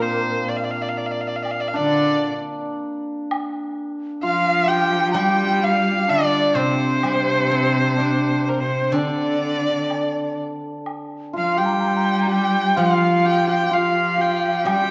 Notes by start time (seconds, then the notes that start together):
Already playing: A#2 A#3 C4 D4 F4 A#4
0.02 C5
0.48 D5
0.56 F5
0.64 D5
0.71 F5
0.82 D5
0.89 F5
0.97 D5
1.06 F5
1.11 D5
1.21 F5
1.28 D5
1.36 F5
1.43 D5, high woodblock
1.51 F5
1.60 D5
1.68 F5
1.74 D4 D5
1.78 D3
3.31 high woodblock
4.22 F3 F4 F5
4.67 G4 G5
5.11 G3 G5 A#5
5.15 G3 G4 G5, high woodblock
5.21 G4
5.29 G4
5.36 G4
5.44 G4
5.51 G4
5.60 G4 F5
5.67 G4
5.73 G4
5.81 G4
5.89 G4
5.97 G4
6.08 D3 D4 D5
6.55 C3 C4 C5
6.59 C5
7.03 G3, high woodblock
7.51 C4
7.96 D4, low woodblock
8.45 A#4 C5
8.60 C3 C5
8.92 D3 D4 D5, high woodblock
8.96 D5
9.90 D5, high woodblock, low woodblock
10.86 high woodblock
11.33 F3 F4 F5
11.37 F5
11.56 G3 G4 G5
11.66 A#5
11.74 G5
11.80 A#5
11.88 G5
11.96 A#5
12.05 G5
12.22 A#5
12.27 G4 G5
12.32 G5
12.76 F3 F4 F5, high woodblock
13.25 G4 G5
13.48 G4 G5
13.63 G4
13.71 F3 F4 F5
14.18 G4 G5
14.65 G3 G4 G5, high woodblock
14.73 G4
14.81 G4
14.87 G4